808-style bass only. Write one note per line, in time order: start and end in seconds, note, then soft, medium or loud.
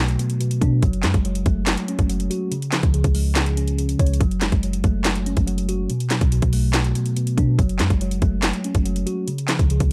0.00 0.17 B1 loud
0.61 0.82 B2 loud
0.83 1.05 F#1 loud
1.04 1.14 F#2 loud
1.14 1.45 F#1 loud
1.46 1.76 F#1 loud
1.99 2.29 F#1 loud
2.83 3.04 C#2 loud
3.04 3.96 C#2 loud
3.99 4.20 C#2 loud
4.21 4.51 F#1 loud
4.52 4.83 F#1 loud
4.84 5.35 F#1 loud
5.37 5.88 F#1 loud
6.21 6.42 B1 loud
6.42 6.93 B1 loud
7.38 7.58 B2 loud
7.59 7.81 F#1 loud
7.80 7.90 F#2 loud
7.90 8.21 F#1 loud
8.22 8.52 F#1 loud
8.75 9.05 F#1 loud
9.59 9.80 C#2 loud
9.80 9.93 C#2 loud